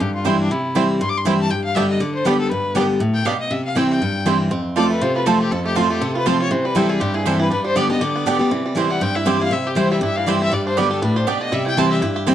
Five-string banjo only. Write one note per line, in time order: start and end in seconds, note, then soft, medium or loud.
0.76 0.82 G3 medium
0.76 0.82 C4 medium
0.76 0.82 E4 medium
1.27 1.32 G3 medium
1.27 1.32 C4 medium
1.27 1.33 E4 medium
1.77 1.82 G3 medium
1.77 1.83 B3 medium
1.77 1.83 D4 medium
2.27 2.33 G3 medium
2.27 2.33 B3 medium
2.27 2.33 D4 medium
2.77 2.83 G3 medium
2.77 2.83 B3 medium
2.77 2.83 D4 medium
3.26 3.32 G3 medium
3.26 3.33 B3 medium
3.26 3.33 D4 medium
3.77 3.83 G3 medium
3.77 3.83 C4 medium
3.77 3.83 E4 medium
4.27 4.33 G3 medium
4.27 4.33 C4 medium
4.27 4.33 E4 medium
4.51 5.40 C4 medium
4.76 5.01 F4 medium
4.90 5.24 A3 medium
5.02 5.26 F4 medium
5.16 5.49 F3 medium
5.27 5.63 F4 soft
5.41 5.74 C4 medium
5.51 5.88 F3 medium
5.66 5.89 A3 medium
5.76 6.12 F4 medium
5.90 6.24 A3 medium
6.02 6.38 C4 medium
6.15 6.39 F4 medium
6.26 6.51 G4 medium
6.40 6.51 F4 medium
6.51 6.87 E3 medium
6.65 6.89 G3 medium
6.76 7.12 E4 medium
6.89 7.64 G3 medium
7.00 7.37 C4 medium
7.14 7.38 E4 medium
7.25 8.01 G4 medium
7.40 7.50 E4 medium
7.51 7.87 D4 medium
7.65 8.40 G3 medium
7.76 8.12 B3 medium
7.90 8.24 D4 medium
8.01 9.27 G4 medium
8.16 8.50 B3 medium
8.27 8.52 D4 medium
8.41 8.65 G3 medium
8.52 8.88 E3 medium
8.66 8.90 G3 medium
8.77 9.13 E4 medium
8.90 9.91 G3 medium
9.02 9.38 C4 medium
9.16 9.40 E4 medium
9.27 9.66 G4 medium
9.41 9.75 E4 medium
9.53 9.88 C4 medium
9.67 10.90 G4 medium
9.77 10.02 E4 medium
9.92 10.52 G3 medium
10.03 10.27 E4 medium
10.17 10.51 E3 medium
10.28 10.53 E4 medium
10.42 10.53 C4 medium
10.53 10.76 G3 medium
10.67 11.00 D4 medium
10.77 11.13 G3 medium
10.91 11.15 G4 medium
11.02 11.26 D4 medium
11.16 11.50 G4 medium
11.27 11.52 D4 medium
11.41 11.52 D3 medium
11.52 11.76 G3 medium
11.66 12.00 E4 medium
11.77 12.14 G3 medium
11.91 12.15 G4 medium
12.02 12.26 E4 medium
12.16 12.35 G4 medium
12.27 12.35 E4 medium